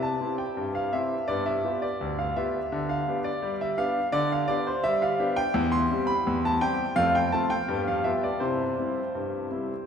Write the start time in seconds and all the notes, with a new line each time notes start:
Already playing: C3
0.03 A5
0.20 C4 E4 G4
0.38 G5
0.57 G2
0.75 F5
0.93 C4 E4 G4 E5
1.28 G2 B3 D5
1.46 E5
1.64 B3 F4 G4
1.82 D5
2.01 D2
2.19 F5
2.36 B3 F4 G4 E5
2.72 D3
2.89 F5
3.08 B3 D4 G4
3.24 D5
3.42 G3
3.61 E5
3.78 B3 D4 G4 F5
4.12 D3 D5
4.32 F5
4.48 B3 D4 G4 D5
4.67 C5
4.84 G3 E5
5.02 F5
5.19 B3 D4 G4
5.36 G5
5.54 E2
5.72 C6
5.91 G3 C4 G4
6.07 B5
6.27 E2
6.45 A5
6.61 G3 C4 G4 G5
6.96 F2 A3 F5
7.15 G5
7.32 A3 C4 F4 A5
7.50 G5
7.68 G2 B3
7.88 F5
8.04 G3 B3 F4 E5
8.23 D5
8.40 C3 E4 C5
8.79 G3 C4 E4
9.15 G2
9.51 G3 C4 E4